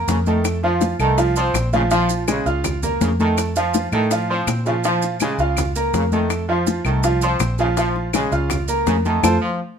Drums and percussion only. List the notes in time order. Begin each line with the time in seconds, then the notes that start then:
0.08 high bongo, low bongo, high conga, maracas
0.26 high bongo, high conga, maracas
0.45 high bongo, claves, maracas
0.64 high bongo, high conga
0.81 high bongo, high conga, maracas
1.00 high bongo, high conga, claves, maracas
1.18 high bongo, high conga, maracas
1.36 high conga, maracas
1.54 high bongo, low bongo, high conga, claves, maracas
1.73 high bongo, high conga, maracas
1.91 high bongo, high conga, maracas
2.09 high bongo, high conga, maracas
2.28 high bongo, high conga, claves, maracas
2.46 high bongo, high conga, maracas
2.64 high bongo, high conga, low conga, claves, maracas
2.83 high conga, low conga, maracas
3.01 high bongo, low bongo, high conga, maracas
3.19 high bongo, high conga, maracas
3.38 high bongo, claves, maracas
3.56 high bongo, high conga, maracas
3.74 high bongo, high conga, maracas
3.92 high bongo, high conga, claves, maracas
4.11 high bongo, high conga, maracas
4.30 high conga
4.47 high bongo, low bongo, claves, maracas
4.66 high bongo, maracas
4.84 high bongo, high conga, maracas
5.02 high bongo, high conga, maracas
5.20 high bongo, high conga, claves, maracas
5.39 high bongo, maracas
5.57 high bongo, high conga, low conga, claves, maracas
5.75 high conga, maracas
5.94 high bongo, low bongo, high conga, maracas
6.12 high bongo, high conga, maracas
6.30 high bongo, claves, maracas
6.49 high bongo, high conga
6.67 high bongo, high conga, maracas
6.85 high bongo, high conga, claves, maracas
7.03 high bongo, high conga, maracas
7.21 high conga, maracas
7.40 high bongo, low bongo, high conga, claves, maracas
7.58 high bongo, maracas
7.77 high bongo, high conga, maracas
7.95 high bongo, high conga
8.13 high bongo, high conga, claves, maracas
8.32 high bongo, high conga, maracas
8.50 high bongo, high conga, low conga, claves, maracas
8.68 high conga, maracas
8.87 high bongo, low bongo, high conga, maracas
9.05 high bongo, high conga, maracas
9.23 high bongo, high conga, claves, maracas